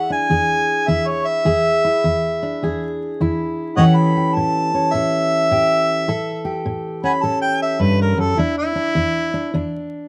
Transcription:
0.00 0.25 E2 medium
0.00 0.89 E4 medium
0.00 0.30 G#4 medium
0.00 0.11 F#5 medium
0.10 1.43 D4 medium
0.10 0.90 G#5 loud
0.30 0.84 E2 medium
0.30 1.43 G#4 medium
0.88 1.42 E2 medium
0.88 1.84 E4 medium
0.88 1.09 E5 medium
1.08 1.28 C#5 medium
1.26 2.96 E5 loud
1.45 1.99 E2 medium
1.45 2.61 G#4 medium
1.85 3.21 E4 medium
2.04 2.58 E2 medium
2.43 3.75 D4 soft
2.63 3.16 E2 medium
2.63 3.76 G#4 medium
3.21 3.74 E2 medium
3.21 3.79 E4 medium
3.77 4.31 A2 medium
3.77 8.42 E3 medium
3.77 4.74 C#4 medium
3.77 4.16 G4 medium
3.77 4.94 A4 medium
3.77 3.84 C#5 medium
3.77 3.85 D#5 medium
3.77 3.98 F#5 loud
3.96 4.36 B5 medium
4.17 5.50 G4 medium
4.35 4.90 A2 medium
4.35 4.95 A5 medium
4.74 6.07 C#4 medium
4.93 5.47 A2 medium
4.93 6.07 A4 medium
4.93 6.62 E5 loud
5.51 6.05 A2 medium
5.51 6.06 G4 medium
6.08 6.62 A2 medium
6.08 7.22 A4 medium
6.45 8.37 G4 medium
6.66 7.20 A2 medium
7.04 8.37 C#4 medium
7.04 7.12 F#5 medium
7.04 7.12 G#5 medium
7.04 7.24 B5 loud
7.22 7.78 A2 medium
7.22 8.37 A4 medium
7.22 7.41 A5 medium
7.42 7.61 G5 loud
7.62 7.83 E5 medium
7.79 8.17 G2 medium
7.79 8.01 B4 medium
8.01 8.21 A#4 medium
8.18 8.37 F#2 medium
8.18 8.41 A4 medium
8.38 8.92 E2 medium
8.38 8.75 D4 medium
8.38 8.58 E4 medium
8.58 9.71 E4 loud
8.75 9.33 D4 medium
8.95 9.50 E2 medium
9.34 9.54 D4 medium
9.54 10.08 E2 medium
9.54 10.08 D4 medium

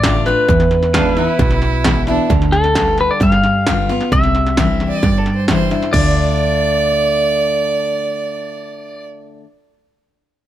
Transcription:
0.00 0.37 A1 medium
0.00 0.45 A2 medium
0.00 0.27 D5 loud
0.00 0.47 D5 medium
0.00 0.47 F5 medium
0.00 kick medium
0.00 snare loud
0.00 hi-hat pedal medium
0.04 0.26 D3 medium
0.04 0.26 A3 medium
0.04 0.26 D4 medium
0.04 0.26 F4 medium
0.26 0.49 D4 soft
0.26 0.48 F4 medium
0.26 1.58 B4 medium
0.26 snare soft
0.48 1.27 E2 medium
0.48 1.36 E2 medium
0.48 kick loud
0.48 snare soft
0.60 snare soft
0.71 snare soft
0.83 snare soft
0.94 1.16 E3 medium
0.94 1.16 G#3 medium
0.94 1.17 B3 medium
0.94 1.17 D4 medium
0.94 1.16 E4 medium
0.94 2.29 B4 medium
0.94 1.15 F5 medium
0.94 kick medium
0.94 snare loud
0.94 hi-hat pedal medium
1.15 1.39 B3 soft
1.15 1.39 E4 medium
1.15 2.05 E4 medium
1.15 2.29 E5 medium
1.15 snare soft
1.39 2.18 B1 medium
1.39 2.26 B2 medium
1.39 kick loud
1.39 snare soft
1.51 snare soft
1.62 snare soft
1.84 2.06 E3 medium
1.84 2.07 G#3 medium
1.84 2.07 B3 medium
1.84 2.07 E4 medium
1.84 kick medium
1.84 snare loud
1.84 hi-hat pedal medium
2.07 2.30 B3 soft
2.07 2.30 D4 medium
2.07 2.30 E4 medium
2.07 snare soft
2.30 3.09 D2 medium
2.30 2.75 D3 medium
2.30 kick loud
2.30 snare soft
2.42 snare soft
2.52 3.00 A4 medium
2.52 snare soft
2.64 snare soft
2.75 3.19 D3 medium
2.75 3.20 G3 medium
2.75 3.20 B3 medium
2.75 3.20 F4 medium
2.75 kick medium
2.75 snare loud
2.75 hi-hat pedal medium
2.98 3.11 B4 medium
2.98 snare soft
3.11 3.22 D5 medium
3.20 4.00 G2 medium
3.20 3.67 G3 medium
3.20 4.12 F5 medium
3.20 kick loud
3.20 snare soft
3.32 snare soft
3.44 snare soft
3.67 3.89 D3 medium
3.67 3.89 G3 medium
3.67 3.89 B3 medium
3.67 3.88 F4 medium
3.67 kick medium
3.67 snare loud
3.67 hi-hat pedal medium
3.89 4.12 B3 soft
3.89 4.11 F4 medium
3.89 snare soft
4.01 snare soft
4.12 4.91 C2 medium
4.12 4.99 C3 medium
4.12 5.02 E5 medium
4.12 kick loud
4.12 snare soft
4.24 snare soft
4.35 snare soft
4.46 snare soft
4.57 5.01 E3 medium
4.57 5.01 G3 medium
4.57 5.02 D4 medium
4.57 5.02 E4 medium
4.57 kick medium
4.57 snare medium
4.57 hi-hat pedal medium
4.80 snare soft
4.89 5.20 D5 medium
5.02 5.82 G2 medium
5.02 5.90 G2 medium
5.02 5.45 D5 medium
5.02 kick loud
5.02 snare soft
5.19 5.33 A4 medium
5.26 snare soft
5.35 5.49 C5 medium
5.48 5.71 E3 medium
5.48 5.71 G3 medium
5.48 5.71 D4 medium
5.48 5.69 E4 medium
5.48 5.83 C5 medium
5.48 kick medium
5.48 snare medium
5.48 hi-hat pedal medium
5.70 5.93 D4 soft
5.70 5.93 E4 medium
5.70 snare soft
5.83 snare soft
5.93 9.05 D2 medium
5.93 9.43 D3 medium
5.93 9.44 A3 medium
5.93 9.45 D4 medium
5.93 9.45 F4 medium
5.93 9.04 D5 medium
5.93 9.07 D5 loud
5.93 kick loud
5.93 crash medium

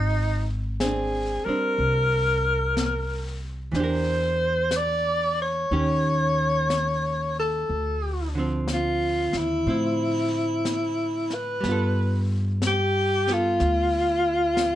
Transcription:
0.00 1.42 G#1 medium
0.00 0.49 D#4 medium
0.80 1.47 C4 soft
0.80 1.48 D4 soft
0.80 1.47 G#4 medium
0.80 brush sweep soft
0.80 snare soft
0.80 hi-hat pedal soft
1.45 3.74 G3 soft
1.45 3.75 C4 soft
1.45 3.75 D4 soft
1.45 3.41 A#4 medium
1.45 muted upright bass stroke soft
1.78 3.70 C2 medium
1.78 brush sweep soft
2.77 brush sweep soft
2.77 snare soft
2.77 hi-hat pedal medium
3.72 5.66 E2 medium
3.72 5.70 E3 soft
3.72 brush sweep soft
3.72 snare soft
3.76 5.72 D4 soft
3.76 4.78 C5 medium
3.80 5.72 G4 soft
3.80 5.76 A#4 soft
4.71 brush sweep soft
4.71 snare soft
4.71 hi-hat pedal soft
4.77 5.40 D5 medium
5.42 7.35 C#5 medium
5.71 7.66 D#2 medium
5.71 7.70 D#3 soft
5.71 7.71 C#4 soft
5.71 7.71 G4 soft
5.71 brush sweep soft
6.70 brush sweep soft
6.70 snare soft
6.70 hi-hat pedal soft
7.40 8.33 A4 medium
7.69 9.30 D2 medium
7.69 brush sweep soft
8.35 11.65 D3 soft
8.35 9.66 F3 soft
8.39 9.67 C4 soft
8.68 brush sweep soft
8.68 snare soft
8.68 hi-hat pedal soft
8.73 9.39 F4 medium
9.33 9.65 D#2 medium
9.33 snare soft
9.38 11.36 E4 medium
9.65 11.61 A2 medium
9.65 11.60 F3 soft
9.65 11.64 C4 soft
9.65 brush sweep soft
9.70 11.66 E4 soft
10.65 brush sweep soft
10.65 snare soft
10.65 hi-hat pedal soft
11.30 12.32 B4 medium
11.30 snare soft
11.60 13.57 G2 medium
11.60 14.75 G3 soft
11.60 brush sweep soft
11.60 snare soft
11.65 13.28 B3 soft
11.69 13.30 F4 soft
11.69 13.31 A4 soft
12.62 brush sweep soft
12.62 snare soft
12.62 hi-hat pedal soft
12.67 13.34 G4 medium
13.27 14.75 B3 soft
13.27 14.75 F4 soft
13.27 snare soft
13.32 14.75 F4 medium
13.32 14.75 A4 soft
13.60 14.75 D2 medium
13.60 brush sweep soft
13.60 snare soft
14.57 brush sweep soft
14.57 snare soft
14.57 hi-hat pedal medium

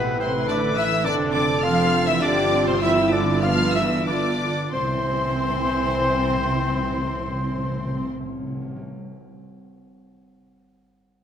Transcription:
0.00 1.04 A1 medium
0.00 0.21 B2 loud
0.00 1.06 A3 medium
0.00 0.21 B3 loud
0.00 1.04 E4 medium
0.00 0.19 B4 loud
0.00 1.06 B4 loud
0.20 0.48 C3 medium
0.20 0.47 C4 medium
0.20 0.33 C5 medium
0.20 0.27 C5 medium
0.20 0.29 C5 medium
0.20 0.48 C6 loud
0.47 0.77 D3 loud
0.47 0.61 D4 loud
0.47 0.78 D5 loud
0.47 0.57 D5 loud
0.47 0.55 D5 loud
0.47 0.77 D6 loud
0.76 1.06 E3 loud
0.76 1.07 E4 loud
0.76 1.06 E5 loud
0.76 0.84 E5 loud
0.76 1.06 E5 loud
0.76 1.06 E6 loud
1.05 2.23 F1 loud
1.05 1.33 D3 loud
1.05 1.63 C4 medium
1.05 1.34 D4 loud
1.05 1.63 D4 loud
1.05 2.06 A4 loud
1.05 1.34 D5 loud
1.05 1.14 D5 loud
1.05 1.13 D5 loud
1.05 1.13 D6 loud
1.34 1.42 D3 loud
1.34 1.47 D4 loud
1.34 1.63 D5 loud
1.34 1.66 D5 loud
1.34 1.42 D5 loud
1.34 1.63 D6 loud
1.63 2.07 F3 loud
1.63 2.21 C4 loud
1.63 2.21 D4 loud
1.63 2.09 F4 loud
1.63 2.08 F5 loud
1.63 2.06 F5 loud
1.63 2.09 F5 loud
1.63 2.07 F6 loud
2.07 2.22 E3 loud
2.07 2.23 E4 loud
2.07 2.21 E5 loud
2.07 2.23 E5 loud
2.07 2.22 E6 loud
2.21 4.50 G1 loud
2.21 2.66 D3 loud
2.21 3.42 C4 loud
2.21 2.68 D4 loud
2.21 3.43 F4 loud
2.21 2.82 G4 loud
2.21 2.66 D5 loud
2.21 2.67 D5 loud
2.21 2.66 D5 loud
2.21 2.67 D6 loud
2.66 2.73 C3 loud
2.66 2.81 C4 loud
2.66 2.72 C5 loud
2.66 2.83 C5 loud
2.66 2.74 C5 loud
2.66 2.82 C6 loud
2.81 2.90 E3 loud
2.81 3.13 E4 loud
2.81 3.42 E4 loud
2.81 3.12 E5 loud
2.81 3.14 E5 loud
2.81 2.91 E5 loud
2.81 3.13 E6 loud
3.11 3.43 D3 loud
3.11 3.44 D4 loud
3.11 3.19 D5 loud
3.11 3.45 D5 loud
3.11 3.43 D5 loud
3.11 3.44 D6 loud
3.42 4.36 G2 loud
3.42 3.75 F3 loud
3.42 4.05 B3 loud
3.42 4.07 D4 medium
3.42 3.74 F4 loud
3.42 4.06 F4 loud
3.42 3.50 F5 loud
3.42 3.75 F5 loud
3.42 3.75 F6 loud
3.73 4.07 E3 loud
3.73 4.08 E4 loud
3.73 4.06 E5 loud
3.73 3.83 E5 loud
3.73 4.07 E5 loud
3.73 4.07 E6 loud
4.06 4.72 D3 medium
4.06 4.49 B3 medium
4.06 4.72 D4 loud
4.06 4.49 F4 medium
4.06 4.22 F4 medium
4.06 4.71 D5 loud
4.06 4.72 D5 medium
4.06 4.71 D6 loud
4.72 8.08 C2 loud
4.72 4.80 C3 loud
4.72 8.08 E3 medium
4.72 8.08 C4 medium
4.72 8.09 C4 loud
4.72 8.08 E4 medium
4.72 8.08 C5 medium
4.72 8.08 C5 loud
4.72 8.08 C5 medium
4.72 8.07 C6 loud
4.72 8.08 C6 loud
4.81 4.88 C3 medium
4.89 4.96 C3 loud
4.96 5.03 C3 medium
5.03 5.11 C3 loud
5.12 5.19 C3 medium
5.20 5.27 C3 loud
5.27 5.34 C3 medium
5.34 5.42 C3 loud
5.43 5.50 C3 medium
5.50 5.57 C3 loud
5.57 5.65 C3 medium
5.65 5.72 C3 medium
5.72 5.79 C3 medium
5.79 5.86 C3 medium
5.86 5.94 C3 medium
5.94 6.01 C3 loud
6.01 6.09 C3 medium
6.09 6.16 C3 loud
6.16 6.24 C3 medium
6.24 6.31 C3 medium
6.31 6.38 C3 medium
6.38 6.45 C3 loud
6.45 6.53 C3 medium
6.53 6.60 C3 medium
6.61 6.68 C3 medium
6.68 6.75 C3 medium
6.75 6.83 C3 medium
6.83 6.90 C3 loud
6.90 6.98 C3 medium
6.98 7.05 C3 loud
7.05 7.12 C3 medium
7.13 7.20 C3 loud
7.20 7.27 C3 medium
7.28 7.35 C3 medium
7.35 7.43 C3 medium
7.43 7.50 C3 medium
7.51 7.58 C3 medium
7.58 7.65 C3 loud
7.65 7.71 C3 medium
7.71 7.79 C3 loud
7.79 7.86 C3 medium
7.86 7.94 C3 medium
7.94 8.01 C3 medium
8.01 8.08 C3 medium
8.09 8.16 C3 medium
8.17 8.24 C3 medium
8.24 8.32 C3 medium
8.32 8.39 C3 medium
8.39 8.47 C3 medium
8.47 8.54 C3 medium
8.54 8.62 C3 medium
8.62 8.69 C3 loud
8.69 8.76 C3 medium
8.76 8.83 C3 loud

